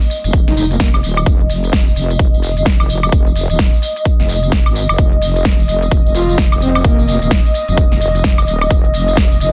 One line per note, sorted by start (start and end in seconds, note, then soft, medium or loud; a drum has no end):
0.00 9.52 D#5 medium
0.00 closed hi-hat soft
0.00 tambourine soft
0.10 open hi-hat medium
0.10 tambourine medium
0.24 0.55 F1 medium
0.24 closed hi-hat medium
0.24 tambourine soft
0.33 kick loud
0.33 closed hi-hat medium
0.33 tambourine soft
0.48 0.53 D#4 medium
0.48 snare soft
0.48 closed hi-hat soft
0.48 tambourine soft
0.57 1.02 F1 medium
0.57 0.66 D#4 medium
0.57 open hi-hat loud
0.57 tambourine medium
0.71 0.77 A#3 medium
0.71 closed hi-hat soft
0.71 tambourine soft
0.80 0.89 A#3 medium
0.80 kick loud
0.80 snare loud
0.80 closed hi-hat medium
0.80 tambourine soft
0.94 closed hi-hat soft
0.94 tambourine soft
0.94 high woodblock medium
1.03 1.25 D#1 medium
1.03 open hi-hat medium
1.03 tambourine medium
1.17 closed hi-hat soft
1.17 tambourine soft
1.17 high woodblock medium
1.26 1.48 F1 medium
1.26 kick loud
1.26 closed hi-hat medium
1.26 tambourine soft
1.41 closed hi-hat soft
1.50 1.95 F1 medium
1.50 open hi-hat loud
1.50 tambourine medium
1.64 closed hi-hat medium
1.64 tambourine soft
1.73 kick loud
1.73 snare loud
1.73 closed hi-hat medium
1.73 tambourine soft
1.88 tambourine soft
1.96 2.18 F1 medium
1.96 open hi-hat loud
1.96 tambourine medium
2.10 closed hi-hat medium
2.10 tambourine soft
2.19 2.31 F1 loud
2.19 kick loud
2.19 closed hi-hat medium
2.19 tambourine soft
2.34 2.78 F1 medium
2.34 tambourine soft
2.43 open hi-hat loud
2.43 tambourine medium
2.57 closed hi-hat soft
2.57 tambourine soft
2.66 kick loud
2.66 snare loud
2.66 closed hi-hat medium
2.66 tambourine soft
2.80 3.11 F1 medium
2.80 closed hi-hat soft
2.80 tambourine soft
2.80 high woodblock medium
2.89 open hi-hat loud
2.89 tambourine medium
3.03 closed hi-hat soft
3.03 tambourine soft
3.03 high woodblock medium
3.12 3.48 F1 medium
3.12 kick loud
3.12 closed hi-hat medium
3.12 tambourine soft
3.27 closed hi-hat soft
3.27 tambourine soft
3.36 open hi-hat loud
3.36 tambourine medium
3.50 3.71 D#1 medium
3.50 closed hi-hat medium
3.50 tambourine soft
3.59 kick loud
3.59 snare loud
3.59 closed hi-hat medium
3.73 closed hi-hat soft
3.73 tambourine soft
3.82 open hi-hat medium
3.82 tambourine medium
3.96 closed hi-hat soft
3.96 tambourine soft
4.05 kick loud
4.05 closed hi-hat medium
4.05 tambourine soft
4.20 4.64 F1 loud
4.20 snare soft
4.20 closed hi-hat soft
4.20 tambourine soft
4.29 open hi-hat loud
4.29 tambourine medium
4.43 closed hi-hat soft
4.43 tambourine soft
4.52 kick loud
4.52 snare loud
4.52 closed hi-hat medium
4.66 4.87 G#1 medium
4.66 closed hi-hat soft
4.66 tambourine soft
4.66 high woodblock medium
4.75 open hi-hat medium
4.75 tambourine medium
4.89 4.97 F1 medium
4.89 closed hi-hat soft
4.89 tambourine soft
4.89 high woodblock medium
4.98 5.20 F1 medium
4.98 kick loud
4.98 closed hi-hat medium
4.98 tambourine soft
5.13 closed hi-hat soft
5.22 5.67 F1 loud
5.22 open hi-hat loud
5.22 tambourine medium
5.36 closed hi-hat soft
5.36 tambourine soft
5.45 kick loud
5.45 snare loud
5.45 closed hi-hat medium
5.60 tambourine soft
5.68 5.90 F1 medium
5.68 open hi-hat medium
5.68 tambourine medium
5.82 closed hi-hat soft
5.82 tambourine soft
5.91 6.03 F1 medium
5.91 kick loud
5.91 closed hi-hat medium
5.91 tambourine soft
6.06 6.50 F1 loud
6.06 tambourine soft
6.15 6.36 F4 medium
6.15 open hi-hat loud
6.15 tambourine medium
6.29 closed hi-hat soft
6.29 tambourine soft
6.38 kick loud
6.38 snare loud
6.38 closed hi-hat medium
6.52 6.83 F1 medium
6.52 closed hi-hat soft
6.52 tambourine soft
6.52 high woodblock medium
6.61 6.82 C4 medium
6.61 open hi-hat medium
6.61 tambourine medium
6.75 closed hi-hat soft
6.75 tambourine soft
6.75 high woodblock medium
6.84 7.20 F1 medium
6.84 7.06 A#3 medium
6.84 kick loud
6.84 closed hi-hat medium
6.84 tambourine soft
6.99 closed hi-hat soft
6.99 tambourine soft
7.08 7.17 A#3 medium
7.08 open hi-hat loud
7.08 tambourine medium
7.22 7.43 D#1 medium
7.22 7.28 A#3 medium
7.22 closed hi-hat medium
7.22 tambourine soft
7.31 kick loud
7.31 snare loud
7.31 closed hi-hat medium
7.45 closed hi-hat soft
7.45 tambourine soft
7.54 open hi-hat medium
7.54 tambourine medium
7.68 7.99 F1 medium
7.68 closed hi-hat soft
7.68 tambourine soft
7.78 kick loud
7.78 closed hi-hat medium
7.78 tambourine soft
7.92 snare soft
7.92 closed hi-hat soft
7.92 tambourine soft
8.01 8.46 F1 medium
8.01 open hi-hat loud
8.01 tambourine medium
8.15 closed hi-hat soft
8.15 tambourine soft
8.24 kick loud
8.24 snare loud
8.24 closed hi-hat medium
8.38 closed hi-hat soft
8.38 tambourine soft
8.38 high woodblock medium
8.47 8.69 D#1 loud
8.47 open hi-hat medium
8.47 tambourine medium
8.61 closed hi-hat soft
8.61 tambourine soft
8.61 high woodblock medium
8.71 8.92 F1 medium
8.71 kick loud
8.71 closed hi-hat medium
8.71 tambourine soft
8.85 closed hi-hat soft
8.94 9.39 F1 loud
8.94 open hi-hat loud
8.94 tambourine medium
9.08 closed hi-hat medium
9.08 tambourine soft
9.17 kick loud
9.17 snare loud
9.17 closed hi-hat medium
9.17 tambourine soft
9.32 tambourine soft
9.40 9.52 F1 medium
9.40 open hi-hat medium
9.40 tambourine medium